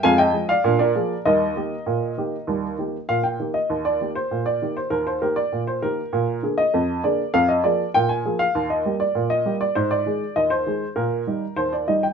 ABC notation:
X:1
M:2/4
L:1/16
Q:1/4=99
K:Eb
V:1 name="Upright piano"
[fa] [eg]2 [df]2 [Bd]3 | [Be]8- | [Be]4 f g2 e- | e d2 c2 d2 c |
B c B d2 c B2- | B3 e3 d2 | f e d2 g a2 f- | f e2 d2 e2 d |
c d3 e c3 | B4 c d e g |]
V:2 name="Upright piano" clef=bass
[F,,A,]2 [F,A,A]2 [B,,D]2 [F,B,A]2 | [E,,G,]2 [E,B,G]2 B,,2 [E,B,G]2 | [E,,G,]2 [E,B,G]2 B,,2 [E,B,G]2 | E,,2 [E,B,G]2 B,,2 [E,B,G]2 |
E,,2 [E,B,G]2 B,,2 [E,B,G]2 | B,,2 [D,B,A]2 F,,2 [D,B,A]2 | F,,2 [F,B,A]2 B,,2 [F,B,A]2 | E,,2 [G,B,G]2 B,,2 [G,B,G]2 |
A,,2 [E,A,A]2 E,,2 [E,A,A]2 | B,,2 [E,G,E]2 E,,2 [E,G,E]2 |]